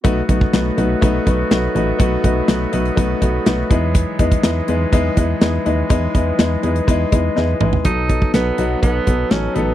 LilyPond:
<<
  \new Staff \with { instrumentName = "Grand piano" } { \time 4/4 \key b \mixolydian \tempo 4 = 123 <a dis' fis' b'>8 <a dis' fis' b'>8 <a dis' fis' b'>8 <a dis' fis' b'>8 <a dis' fis' b'>8 <a dis' fis' b'>8 <a dis' fis' b'>8 <a dis' fis' b'>8 | <a dis' fis' b'>8 <a dis' fis' b'>8 <a dis' fis' b'>8 <a dis' fis' b'>8 <a dis' fis' b'>8 <a dis' fis' b'>8 <a dis' fis' b'>8 <gis dis' e' b'>8~ | <gis dis' e' b'>8 <gis dis' e' b'>8 <gis dis' e' b'>8 <gis dis' e' b'>8 <gis dis' e' b'>8 <gis dis' e' b'>8 <gis dis' e' b'>8 <gis dis' e' b'>8 | <gis dis' e' b'>8 <gis dis' e' b'>8 <gis dis' e' b'>8 <gis dis' e' b'>8 <gis dis' e' b'>8 <gis dis' e' b'>8 <gis dis' e' b'>8 <gis dis' e' b'>8 |
<fis b dis' a'>8 <fis b dis' a'>8 <fis b dis' a'>8 <fis b dis' fis'>8 <fis b dis' a'>8 <fis b dis' a'>8 <fis b dis' a'>8 <fis b dis' a'>8 | }
  \new Staff \with { instrumentName = "Tenor saxophone" } { \time 4/4 \key b \mixolydian r1 | r1 | r1 | r1 |
dis'4 b4 b4 cis'8 b8 | }
  \new Staff \with { instrumentName = "Woodwind section" } { \clef bass \time 4/4 \key b \mixolydian << { <fis b>1~ | <fis b>1~ | <fis b>1~ | <fis b>1 |
r1 | } \\ { <a fis'>1~ | <a fis'>2.~ <a fis'>8 <e gis>8~ | <e gis>1~ | <e gis>1 |
r1 | } >> }
  \new Staff \with { instrumentName = "FM bass" } { \clef bass \time 4/4 \key b \mixolydian b,,8 b,,8 b,,8 b,,8 b,,8 b,,8 b,,8 a,,8 | b,,8 b,,8 b,,8 b,,8 b,,8 b,,8 b,,8 e,8~ | e,8 e,8 e,8 e,8 e,8 e,8 e,8 dis,8 | e,8 e,8 e,8 e,8 e,8 e,8 e,8 a,,8 |
b,,4 b,,8 b,,8 b,,8 b,,8 a,,8 a,,8 | }
  \new DrumStaff \with { instrumentName = "Drums" } \drummode { \time 4/4 <hh bd>8 <hh bd>16 bd16 <hh sn>8 hh8 <hh bd>8 <hh bd>8 <hh sn>8 hh8 | <hh bd>8 <hh bd>8 <hh sn>8 hh16 hh16 <hh bd>8 <hh bd>8 <hh sn>8 <hh bd>8 | <hh bd>8 <hh bd>16 <hh bd>16 <hh sn>8 hh8 <hh bd>8 <hh bd>8 <hh sn>8 hh8 | <hh bd>8 <hh bd>8 <hh sn>8 hh16 hh16 <hh bd>8 <hh bd>8 sn8 toml16 tomfh16 |
<hh bd>8 <hh bd>16 bd16 <hh sn>8 hh8 <hh bd>8 <hh bd>8 <hh sn>8 hh8 | }
>>